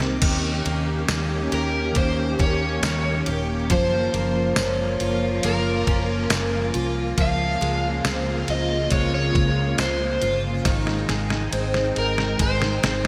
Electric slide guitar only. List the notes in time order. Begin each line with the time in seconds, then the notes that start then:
1.54 A#4
1.98 C5
2.41 C#5
3.72 C5
5.45 A#4
7.22 F5
8.50 D#5
8.92 C#5
9.15 C#5
9.80 C5
11.98 A#4
12.42 C5